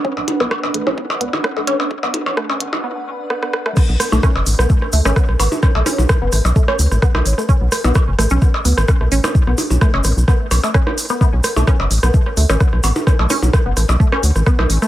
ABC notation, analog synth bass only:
X:1
M:4/4
L:1/16
Q:"Swing 16ths" 1/4=129
K:Bm
V:1 name="Analog synth bass" clef=bass
z B,,, z B,,, z F,,, A,,, B,,, z2 D,, A,,, z B,,, A,,, z | z B,,, z B,,, z F,,, A,,, B,,, z8 | z B,,, z B,,, z F,,, A,,, B,,, z2 D,, A,,, z B,,, A,,, z | z B,,, z B,,, z F,,, A,,, B,,, z2 D,, A,,, z B,,, A,,, z |
z B,,, z B,,, z F,,, A,,, B,,, z2 D,, A,,, z B,,, A,,, z | z B,,, z B,,, z F,,, A,,, B,,, z2 B,,, z4 z | z B,,, z B,,, z F,,, A,,, B,,, z2 D,, A,,, z B,,, A,,, z | z B,,, z B,,, z F,,, A,,, B,,, z2 D,, A,,, z B,,, A,,, z |]